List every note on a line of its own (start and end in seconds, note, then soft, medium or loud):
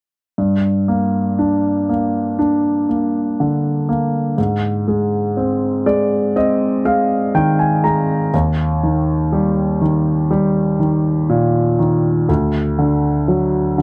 0.38 4.34 G2 soft
0.88 1.88 A#3 soft
1.39 2.37 D4 soft
1.89 2.87 A#3 soft
2.39 4.34 D4 soft
2.89 3.87 A#3 soft
3.40 4.36 D3 soft
3.89 4.37 A#3 soft
4.38 8.29 G#2 soft
4.88 5.85 G#3 soft
5.37 6.35 C4 soft
5.86 6.84 G#3 soft
5.86 6.32 D5 soft
6.36 8.30 C4 soft
6.36 6.82 D#5 soft
6.85 7.83 G#3 soft
6.85 7.31 F5 soft
7.35 8.31 D#3 soft
7.35 7.57 G5 soft
7.59 7.82 G#5 soft
7.84 8.32 G#3 soft
7.84 8.30 A#5 soft
8.34 12.25 D#2 soft
8.83 9.80 D#3 soft
9.32 10.29 G3 soft
9.81 10.78 D#3 soft
10.31 12.25 G3 soft
10.80 11.77 D#3 soft
11.29 12.26 A#2 soft
11.79 12.27 D#3 soft
12.29 13.82 D2 soft
12.79 13.77 D3 soft
13.28 13.82 F#3 soft
13.78 13.82 D3 soft